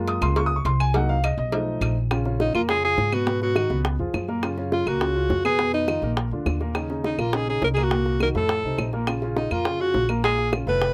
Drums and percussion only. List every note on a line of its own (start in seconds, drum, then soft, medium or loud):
0.08 cowbell medium
0.22 cowbell medium
0.22 claves medium
0.36 cowbell loud
0.65 cowbell medium
0.80 claves medium
0.94 cowbell loud
1.24 cowbell medium
1.24 claves medium
1.52 cowbell loud
1.82 cowbell medium
1.82 claves medium
2.11 high bongo medium
2.11 claves medium
2.25 high bongo soft
2.40 high bongo soft
2.55 high bongo soft
2.55 claves medium
2.69 high bongo medium
2.98 high bongo soft
2.98 low bongo medium
3.12 high bongo soft
3.12 claves medium
3.27 high bongo medium
3.42 high bongo soft
3.56 high bongo soft
3.56 claves medium
3.70 high bongo soft
3.85 high bongo medium
4.14 high bongo soft
4.14 low bongo medium
4.14 claves medium
4.29 high bongo soft
4.43 high bongo medium
4.43 claves medium
4.58 high bongo soft
4.72 high bongo medium
4.87 high bongo soft
4.87 claves medium
5.01 high bongo medium
5.30 high bongo soft
5.30 low bongo medium
5.45 high bongo soft
5.45 claves medium
5.59 high bongo medium
5.74 high bongo soft
5.88 high bongo medium
5.88 claves medium
6.03 high bongo soft
6.17 high bongo medium
6.46 high bongo soft
6.46 low bongo medium
6.46 claves medium
6.61 high bongo soft
6.75 high bongo medium
6.75 claves medium
6.90 high bongo soft
7.04 high bongo medium
7.19 high bongo soft
7.19 claves medium
7.33 high bongo medium
7.62 high bongo soft
7.62 low bongo medium
7.77 high bongo soft
7.77 claves medium
7.91 high bongo medium
8.06 high bongo soft
8.20 high bongo medium
8.20 claves medium
8.35 high bongo soft
8.49 high bongo medium
8.78 high bongo soft
8.78 low bongo medium
8.78 claves medium
8.93 high bongo soft
9.07 high bongo medium
9.07 claves medium
9.22 high bongo soft
9.37 high bongo medium
9.51 high bongo soft
9.51 claves medium
9.65 high bongo medium
9.94 high bongo soft
9.94 low bongo medium
10.09 high bongo soft
10.09 claves medium
10.24 high bongo medium
10.38 high bongo soft
10.53 high bongo medium
10.53 claves medium
10.67 high bongo soft
10.82 high bongo medium